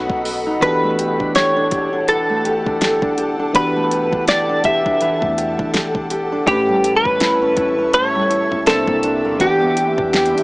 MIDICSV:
0, 0, Header, 1, 7, 480
1, 0, Start_track
1, 0, Tempo, 731707
1, 407, Time_signature, 4, 2, 24, 8
1, 6844, End_track
2, 0, Start_track
2, 0, Title_t, "Ambient pad"
2, 0, Program_c, 0, 92
2, 0, Note_on_c, 0, 69, 85
2, 0, Note_on_c, 0, 75, 76
2, 0, Note_on_c, 0, 78, 78
2, 0, Note_on_c, 0, 83, 93
2, 386, Note_off_c, 0, 75, 0
2, 387, Note_off_c, 0, 78, 0
2, 387, Note_off_c, 0, 83, 0
2, 408, Note_on_c, 0, 78, 76
2, 409, Note_on_c, 0, 81, 76
2, 4221, Note_off_c, 0, 78, 0
2, 4246, Note_on_c, 0, 76, 75
2, 4247, Note_on_c, 0, 85, 97
2, 5660, Note_off_c, 0, 69, 0
2, 5662, Note_off_c, 0, 81, 0
2, 5673, Note_off_c, 0, 85, 0
2, 6164, Note_on_c, 0, 86, 89
2, 6165, Note_on_c, 0, 67, 83
2, 6165, Note_on_c, 0, 83, 75
2, 6844, Note_off_c, 0, 67, 0
2, 6844, Note_off_c, 0, 76, 0
2, 6844, Note_off_c, 0, 83, 0
2, 6844, Note_off_c, 0, 86, 0
2, 6844, End_track
3, 0, Start_track
3, 0, Title_t, "Clean electric guitar"
3, 0, Program_c, 1, 27
3, 410, Note_on_c, 1, 71, 93
3, 887, Note_off_c, 1, 71, 0
3, 890, Note_on_c, 1, 73, 93
3, 1369, Note_on_c, 1, 69, 87
3, 1383, Note_off_c, 1, 73, 0
3, 2333, Note_on_c, 1, 71, 98
3, 2356, Note_off_c, 1, 69, 0
3, 2783, Note_off_c, 1, 71, 0
3, 2812, Note_on_c, 1, 74, 106
3, 3048, Note_off_c, 1, 74, 0
3, 3051, Note_on_c, 1, 76, 99
3, 3742, Note_off_c, 1, 76, 0
3, 4249, Note_on_c, 1, 67, 92
3, 4546, Note_off_c, 1, 67, 0
3, 4569, Note_on_c, 1, 71, 109
3, 5206, Note_off_c, 1, 71, 0
3, 5209, Note_on_c, 1, 73, 110
3, 5661, Note_off_c, 1, 73, 0
3, 5689, Note_on_c, 1, 69, 109
3, 6169, Note_off_c, 1, 69, 0
3, 6172, Note_on_c, 1, 67, 86
3, 6844, Note_off_c, 1, 67, 0
3, 6844, End_track
4, 0, Start_track
4, 0, Title_t, "FM electric piano"
4, 0, Program_c, 2, 5
4, 0, Control_c, 2, 64, 127
4, 0, Note_on_c, 2, 47, 73
4, 0, Note_on_c, 2, 59, 64
4, 0, Note_on_c, 2, 61, 67
4, 0, Note_on_c, 2, 63, 63
4, 0, Note_on_c, 2, 69, 81
4, 375, Note_off_c, 2, 47, 0
4, 379, Note_off_c, 2, 59, 0
4, 383, Note_off_c, 2, 61, 0
4, 387, Note_off_c, 2, 63, 0
4, 392, Note_off_c, 2, 69, 0
4, 396, Note_on_c, 2, 52, 71
4, 402, Note_on_c, 2, 59, 63
4, 409, Note_on_c, 2, 62, 64
4, 416, Control_c, 2, 64, 0
4, 416, Note_on_c, 2, 66, 66
4, 423, Note_on_c, 2, 67, 67
4, 429, Note_on_c, 2, 69, 79
4, 530, Control_c, 2, 64, 127
4, 2295, Note_off_c, 2, 52, 0
4, 2298, Note_off_c, 2, 59, 0
4, 2302, Note_off_c, 2, 62, 0
4, 2305, Note_off_c, 2, 66, 0
4, 2308, Note_off_c, 2, 67, 0
4, 2312, Note_off_c, 2, 69, 0
4, 2315, Note_on_c, 2, 52, 71
4, 2323, Note_on_c, 2, 59, 65
4, 2330, Note_on_c, 2, 62, 67
4, 2336, Note_on_c, 2, 66, 63
4, 2343, Note_on_c, 2, 67, 65
4, 2349, Note_on_c, 2, 71, 79
4, 4215, Note_off_c, 2, 52, 0
4, 4218, Note_off_c, 2, 59, 0
4, 4222, Note_off_c, 2, 62, 0
4, 4225, Note_off_c, 2, 66, 0
4, 4229, Note_off_c, 2, 67, 0
4, 4232, Note_off_c, 2, 71, 0
4, 4236, Note_on_c, 2, 45, 72
4, 4244, Note_on_c, 2, 57, 69
4, 4252, Note_on_c, 2, 61, 67
4, 4256, Control_c, 2, 64, 0
4, 4261, Note_on_c, 2, 67, 71
4, 4269, Note_on_c, 2, 71, 78
4, 4370, Control_c, 2, 64, 127
4, 5655, Note_off_c, 2, 45, 0
4, 5659, Note_off_c, 2, 57, 0
4, 5663, Note_off_c, 2, 61, 0
4, 5667, Note_off_c, 2, 67, 0
4, 5672, Note_off_c, 2, 71, 0
4, 5683, Note_on_c, 2, 48, 71
4, 5687, Note_on_c, 2, 58, 67
4, 5691, Note_on_c, 2, 62, 66
4, 5695, Control_c, 2, 64, 0
4, 5696, Note_on_c, 2, 64, 67
4, 5699, Note_on_c, 2, 72, 79
4, 5814, Control_c, 2, 64, 127
4, 6155, Note_on_c, 2, 52, 73
4, 6163, Note_on_c, 2, 59, 69
4, 6164, Note_off_c, 2, 62, 0
4, 6165, Note_off_c, 2, 48, 0
4, 6167, Note_off_c, 2, 58, 0
4, 6171, Note_off_c, 2, 64, 0
4, 6172, Note_on_c, 2, 62, 67
4, 6173, Note_off_c, 2, 72, 0
4, 6173, Control_c, 2, 64, 0
4, 6180, Note_on_c, 2, 78, 64
4, 6189, Note_on_c, 2, 67, 84
4, 6310, Control_c, 2, 64, 127
4, 6844, Note_off_c, 2, 52, 0
4, 6844, Note_off_c, 2, 59, 0
4, 6844, Note_off_c, 2, 62, 0
4, 6844, Note_off_c, 2, 67, 0
4, 6844, Note_off_c, 2, 78, 0
4, 6844, End_track
5, 0, Start_track
5, 0, Title_t, "Steel-string acoustic guitar"
5, 0, Program_c, 3, 25
5, 0, Note_on_c, 3, 47, 88
5, 0, Note_on_c, 3, 57, 61
5, 0, Note_on_c, 3, 66, 75
5, 65, Note_on_c, 3, 63, 62
5, 163, Note_off_c, 3, 66, 0
5, 166, Note_on_c, 3, 66, 70
5, 297, Note_off_c, 3, 63, 0
5, 305, Note_on_c, 3, 63, 67
5, 407, Note_on_c, 3, 52, 94
5, 462, Note_off_c, 3, 47, 0
5, 462, Note_off_c, 3, 63, 0
5, 543, Note_off_c, 3, 57, 0
5, 546, Note_on_c, 3, 57, 69
5, 644, Note_off_c, 3, 66, 0
5, 647, Note_on_c, 3, 67, 74
5, 785, Note_on_c, 3, 62, 60
5, 884, Note_off_c, 3, 67, 0
5, 887, Note_on_c, 3, 67, 67
5, 1018, Note_off_c, 3, 62, 0
5, 1026, Note_on_c, 3, 62, 66
5, 1123, Note_off_c, 3, 67, 0
5, 1126, Note_on_c, 3, 67, 78
5, 1258, Note_off_c, 3, 62, 0
5, 1265, Note_on_c, 3, 62, 63
5, 1365, Note_off_c, 3, 52, 0
5, 1367, Note_on_c, 3, 52, 88
5, 1503, Note_off_c, 3, 57, 0
5, 1506, Note_on_c, 3, 57, 58
5, 1605, Note_off_c, 3, 67, 0
5, 1608, Note_on_c, 3, 67, 73
5, 1739, Note_off_c, 3, 62, 0
5, 1747, Note_on_c, 3, 62, 60
5, 1844, Note_off_c, 3, 67, 0
5, 1846, Note_on_c, 3, 67, 70
5, 1978, Note_off_c, 3, 62, 0
5, 1986, Note_on_c, 3, 62, 65
5, 2084, Note_off_c, 3, 67, 0
5, 2087, Note_on_c, 3, 67, 75
5, 2219, Note_off_c, 3, 62, 0
5, 2227, Note_on_c, 3, 62, 67
5, 2325, Note_off_c, 3, 52, 0
5, 2328, Note_on_c, 3, 52, 93
5, 2465, Note_off_c, 3, 57, 0
5, 2468, Note_on_c, 3, 57, 66
5, 2565, Note_off_c, 3, 67, 0
5, 2568, Note_on_c, 3, 67, 71
5, 2700, Note_off_c, 3, 62, 0
5, 2708, Note_on_c, 3, 62, 64
5, 2806, Note_off_c, 3, 67, 0
5, 2809, Note_on_c, 3, 67, 71
5, 2940, Note_off_c, 3, 62, 0
5, 2948, Note_on_c, 3, 62, 65
5, 3047, Note_off_c, 3, 67, 0
5, 3050, Note_on_c, 3, 67, 75
5, 3180, Note_off_c, 3, 62, 0
5, 3188, Note_on_c, 3, 62, 63
5, 3287, Note_off_c, 3, 52, 0
5, 3289, Note_on_c, 3, 52, 89
5, 3425, Note_off_c, 3, 57, 0
5, 3428, Note_on_c, 3, 57, 59
5, 3526, Note_off_c, 3, 67, 0
5, 3529, Note_on_c, 3, 67, 75
5, 3660, Note_off_c, 3, 62, 0
5, 3667, Note_on_c, 3, 62, 62
5, 3764, Note_off_c, 3, 67, 0
5, 3767, Note_on_c, 3, 67, 75
5, 3899, Note_off_c, 3, 62, 0
5, 3907, Note_on_c, 3, 62, 63
5, 4005, Note_off_c, 3, 67, 0
5, 4007, Note_on_c, 3, 67, 73
5, 4139, Note_off_c, 3, 62, 0
5, 4147, Note_on_c, 3, 62, 68
5, 4248, Note_on_c, 3, 45, 94
5, 4303, Note_off_c, 3, 62, 0
5, 4384, Note_off_c, 3, 57, 0
5, 4386, Note_on_c, 3, 55, 67
5, 4484, Note_off_c, 3, 67, 0
5, 4487, Note_on_c, 3, 64, 75
5, 4625, Note_on_c, 3, 61, 64
5, 4724, Note_off_c, 3, 64, 0
5, 4726, Note_on_c, 3, 64, 72
5, 4859, Note_off_c, 3, 61, 0
5, 4866, Note_on_c, 3, 61, 69
5, 4964, Note_off_c, 3, 64, 0
5, 4967, Note_on_c, 3, 64, 77
5, 5099, Note_off_c, 3, 61, 0
5, 5107, Note_on_c, 3, 61, 67
5, 5201, Note_off_c, 3, 45, 0
5, 5209, Note_on_c, 3, 45, 88
5, 5344, Note_off_c, 3, 55, 0
5, 5347, Note_on_c, 3, 55, 62
5, 5444, Note_off_c, 3, 64, 0
5, 5446, Note_on_c, 3, 64, 73
5, 5578, Note_off_c, 3, 61, 0
5, 5585, Note_off_c, 3, 52, 0
5, 5586, Note_on_c, 3, 61, 63
5, 5686, Note_on_c, 3, 48, 89
5, 5742, Note_off_c, 3, 61, 0
5, 5743, Note_off_c, 3, 45, 0
5, 5827, Note_on_c, 3, 58, 66
5, 5847, Note_off_c, 3, 64, 0
5, 5928, Note_on_c, 3, 62, 77
5, 6059, Note_off_c, 3, 58, 0
5, 6067, Note_on_c, 3, 58, 64
5, 6164, Note_off_c, 3, 55, 0
5, 6167, Note_on_c, 3, 52, 90
5, 6222, Note_off_c, 3, 48, 0
5, 6223, Note_off_c, 3, 58, 0
5, 6306, Note_on_c, 3, 59, 68
5, 6406, Note_on_c, 3, 67, 72
5, 6543, Note_off_c, 3, 62, 0
5, 6546, Note_on_c, 3, 62, 65
5, 6644, Note_off_c, 3, 67, 0
5, 6647, Note_on_c, 3, 67, 67
5, 6778, Note_off_c, 3, 62, 0
5, 6786, Note_on_c, 3, 62, 62
5, 6844, Note_off_c, 3, 52, 0
5, 6844, Note_off_c, 3, 59, 0
5, 6844, Note_off_c, 3, 62, 0
5, 6844, Note_off_c, 3, 67, 0
5, 6844, End_track
6, 0, Start_track
6, 0, Title_t, "808-style bass"
6, 0, Program_c, 4, 38
6, 65, Note_on_c, 4, 35, 109
6, 393, Note_off_c, 4, 35, 0
6, 410, Note_on_c, 4, 28, 113
6, 651, Note_on_c, 4, 35, 101
6, 660, Note_off_c, 4, 28, 0
6, 781, Note_off_c, 4, 35, 0
6, 789, Note_on_c, 4, 28, 102
6, 1115, Note_off_c, 4, 28, 0
6, 1129, Note_on_c, 4, 28, 103
6, 1722, Note_off_c, 4, 28, 0
6, 1750, Note_on_c, 4, 28, 98
6, 1979, Note_off_c, 4, 28, 0
6, 1985, Note_on_c, 4, 28, 104
6, 2312, Note_off_c, 4, 28, 0
6, 2329, Note_on_c, 4, 28, 121
6, 2692, Note_off_c, 4, 28, 0
6, 2708, Note_on_c, 4, 28, 97
6, 3034, Note_off_c, 4, 28, 0
6, 3048, Note_on_c, 4, 28, 105
6, 3412, Note_off_c, 4, 28, 0
6, 3427, Note_on_c, 4, 40, 100
6, 3657, Note_off_c, 4, 40, 0
6, 3670, Note_on_c, 4, 28, 100
6, 3765, Note_off_c, 4, 28, 0
6, 3770, Note_on_c, 4, 28, 110
6, 3900, Note_off_c, 4, 28, 0
6, 3904, Note_on_c, 4, 28, 110
6, 4232, Note_off_c, 4, 28, 0
6, 4249, Note_on_c, 4, 33, 112
6, 4612, Note_off_c, 4, 33, 0
6, 4629, Note_on_c, 4, 33, 105
6, 4955, Note_off_c, 4, 33, 0
6, 4969, Note_on_c, 4, 33, 103
6, 5562, Note_off_c, 4, 33, 0
6, 5590, Note_on_c, 4, 36, 99
6, 5818, Note_off_c, 4, 36, 0
6, 5824, Note_on_c, 4, 36, 110
6, 6070, Note_on_c, 4, 40, 106
6, 6079, Note_off_c, 4, 36, 0
6, 6164, Note_off_c, 4, 40, 0
6, 6169, Note_on_c, 4, 28, 113
6, 6532, Note_off_c, 4, 28, 0
6, 6549, Note_on_c, 4, 40, 111
6, 6790, Note_on_c, 4, 31, 99
6, 6799, Note_off_c, 4, 40, 0
6, 6844, Note_off_c, 4, 31, 0
6, 6844, End_track
7, 0, Start_track
7, 0, Title_t, "Drums"
7, 63, Note_on_c, 9, 36, 100
7, 129, Note_off_c, 9, 36, 0
7, 166, Note_on_c, 9, 46, 65
7, 231, Note_off_c, 9, 46, 0
7, 408, Note_on_c, 9, 36, 113
7, 409, Note_on_c, 9, 42, 91
7, 473, Note_off_c, 9, 36, 0
7, 475, Note_off_c, 9, 42, 0
7, 648, Note_on_c, 9, 42, 85
7, 714, Note_off_c, 9, 42, 0
7, 788, Note_on_c, 9, 36, 96
7, 853, Note_off_c, 9, 36, 0
7, 885, Note_on_c, 9, 42, 66
7, 891, Note_on_c, 9, 38, 122
7, 951, Note_off_c, 9, 42, 0
7, 957, Note_off_c, 9, 38, 0
7, 1124, Note_on_c, 9, 42, 65
7, 1127, Note_on_c, 9, 36, 100
7, 1189, Note_off_c, 9, 42, 0
7, 1193, Note_off_c, 9, 36, 0
7, 1365, Note_on_c, 9, 42, 67
7, 1431, Note_off_c, 9, 42, 0
7, 1609, Note_on_c, 9, 42, 64
7, 1675, Note_off_c, 9, 42, 0
7, 1748, Note_on_c, 9, 36, 88
7, 1814, Note_off_c, 9, 36, 0
7, 1846, Note_on_c, 9, 42, 75
7, 1848, Note_on_c, 9, 38, 113
7, 1912, Note_off_c, 9, 42, 0
7, 1913, Note_off_c, 9, 38, 0
7, 1982, Note_on_c, 9, 36, 99
7, 2048, Note_off_c, 9, 36, 0
7, 2085, Note_on_c, 9, 42, 67
7, 2150, Note_off_c, 9, 42, 0
7, 2327, Note_on_c, 9, 36, 123
7, 2327, Note_on_c, 9, 42, 90
7, 2392, Note_off_c, 9, 36, 0
7, 2393, Note_off_c, 9, 42, 0
7, 2568, Note_on_c, 9, 42, 80
7, 2634, Note_off_c, 9, 42, 0
7, 2707, Note_on_c, 9, 36, 99
7, 2773, Note_off_c, 9, 36, 0
7, 2805, Note_on_c, 9, 42, 65
7, 2810, Note_on_c, 9, 38, 119
7, 2870, Note_off_c, 9, 42, 0
7, 2876, Note_off_c, 9, 38, 0
7, 3043, Note_on_c, 9, 42, 63
7, 3047, Note_on_c, 9, 36, 97
7, 3108, Note_off_c, 9, 42, 0
7, 3112, Note_off_c, 9, 36, 0
7, 3188, Note_on_c, 9, 36, 94
7, 3253, Note_off_c, 9, 36, 0
7, 3284, Note_on_c, 9, 42, 66
7, 3350, Note_off_c, 9, 42, 0
7, 3425, Note_on_c, 9, 36, 92
7, 3490, Note_off_c, 9, 36, 0
7, 3529, Note_on_c, 9, 42, 67
7, 3595, Note_off_c, 9, 42, 0
7, 3668, Note_on_c, 9, 36, 93
7, 3733, Note_off_c, 9, 36, 0
7, 3766, Note_on_c, 9, 42, 80
7, 3767, Note_on_c, 9, 38, 112
7, 3831, Note_off_c, 9, 42, 0
7, 3833, Note_off_c, 9, 38, 0
7, 3902, Note_on_c, 9, 36, 95
7, 3968, Note_off_c, 9, 36, 0
7, 4004, Note_on_c, 9, 42, 63
7, 4070, Note_off_c, 9, 42, 0
7, 4247, Note_on_c, 9, 36, 116
7, 4247, Note_on_c, 9, 42, 87
7, 4312, Note_off_c, 9, 36, 0
7, 4313, Note_off_c, 9, 42, 0
7, 4488, Note_on_c, 9, 42, 86
7, 4553, Note_off_c, 9, 42, 0
7, 4627, Note_on_c, 9, 36, 98
7, 4693, Note_off_c, 9, 36, 0
7, 4725, Note_on_c, 9, 42, 67
7, 4731, Note_on_c, 9, 38, 124
7, 4791, Note_off_c, 9, 42, 0
7, 4797, Note_off_c, 9, 38, 0
7, 4964, Note_on_c, 9, 42, 67
7, 4967, Note_on_c, 9, 36, 91
7, 5029, Note_off_c, 9, 42, 0
7, 5033, Note_off_c, 9, 36, 0
7, 5205, Note_on_c, 9, 42, 66
7, 5271, Note_off_c, 9, 42, 0
7, 5449, Note_on_c, 9, 42, 64
7, 5515, Note_off_c, 9, 42, 0
7, 5588, Note_on_c, 9, 36, 88
7, 5653, Note_off_c, 9, 36, 0
7, 5686, Note_on_c, 9, 42, 73
7, 5688, Note_on_c, 9, 38, 117
7, 5752, Note_off_c, 9, 42, 0
7, 5753, Note_off_c, 9, 38, 0
7, 5822, Note_on_c, 9, 36, 104
7, 5888, Note_off_c, 9, 36, 0
7, 5924, Note_on_c, 9, 42, 70
7, 5990, Note_off_c, 9, 42, 0
7, 6166, Note_on_c, 9, 36, 123
7, 6166, Note_on_c, 9, 42, 95
7, 6232, Note_off_c, 9, 36, 0
7, 6232, Note_off_c, 9, 42, 0
7, 6408, Note_on_c, 9, 42, 78
7, 6473, Note_off_c, 9, 42, 0
7, 6547, Note_on_c, 9, 36, 95
7, 6613, Note_off_c, 9, 36, 0
7, 6647, Note_on_c, 9, 42, 41
7, 6651, Note_on_c, 9, 38, 121
7, 6713, Note_off_c, 9, 42, 0
7, 6717, Note_off_c, 9, 38, 0
7, 6728, Note_on_c, 9, 42, 45
7, 6794, Note_off_c, 9, 42, 0
7, 6807, Note_on_c, 9, 42, 51
7, 6844, Note_off_c, 9, 42, 0
7, 6844, End_track
0, 0, End_of_file